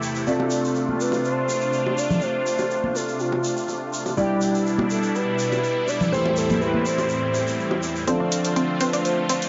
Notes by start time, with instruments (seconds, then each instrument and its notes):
Already playing: supersaw synth E2 C3 A3 E4 G4, grand piano E3 A3 G4 C5
0.03 shaker
0.15 shaker
0.27 grand piano C4 F4 D5, supersaw synth D4 F4, analog synth lead A4, shaker
0.40 high bongo
0.51 shaker
0.65 shaker
0.75 high bongo, shaker
0.89 high conga
1.01 analog synth lead B4, shaker
1.12 high bongo, shaker
1.24 analog synth lead C5, shaker
1.49 high bongo, shaker
1.61 shaker
1.73 shaker
1.86 high bongo
1.98 analog synth lead D5, shaker
2.11 low conga, shaker
2.21 analog synth lead C5, high bongo, shaker
2.47 shaker
2.58 high bongo, shaker
2.70 shaker
2.84 high conga
2.95 analog synth lead A4, high bongo, shaker
3.08 shaker
3.20 analog synth lead F4, shaker
3.32 high bongo
3.44 shaker
3.57 shaker
3.68 high bongo, shaker
3.93 shaker
4.06 high bongo, shaker
4.17 supersaw synth B2 G3 D4 E4, grand piano G3 E4 D5, analog synth lead G4, shaker
4.41 high bongo, shaker
4.55 shaker
4.66 shaker
4.78 high bongo, high conga
4.90 analog synth lead A4, shaker
5.03 shaker
5.15 analog synth lead B4, high bongo, shaker
5.39 shaker
5.52 high bongo, shaker
5.64 shaker
5.88 analog synth lead D5, high bongo, shaker
6.00 low conga, shaker
6.12 supersaw synth E2 A2 C4, grand piano E3 A3 G4 C5, analog synth lead C5, shaker
6.26 high bongo
6.37 analog synth lead A4, shaker
6.50 high conga, low conga, shaker
6.61 analog synth lead B4, high bongo, shaker
6.74 high conga
6.86 analog synth lead C5, shaker
6.98 high bongo, shaker
7.09 shaker
7.34 high bongo, shaker
7.47 shaker
7.60 shaker
7.71 high bongo
7.83 shaker
7.96 shaker
8.07 supersaw synth D3 A3 C4 F4, grand piano F3 D4 C5, synth pluck C4, synth bell A4, analog synth lead A4, closed hi-hat, shaker
8.20 synth pluck D4
8.32 open hi-hat, shaker
8.44 closed hi-hat, shaker
8.56 synth pluck C4, closed hi-hat, shaker
8.81 synth pluck C4, synth bell B4, analog synth lead B4, open hi-hat, shaker
8.93 synth pluck D4, closed hi-hat, shaker
9.05 synth bell C5, analog synth lead C5, closed hi-hat, shaker
9.29 synth pluck C4, open hi-hat, shaker
9.42 closed hi-hat, shaker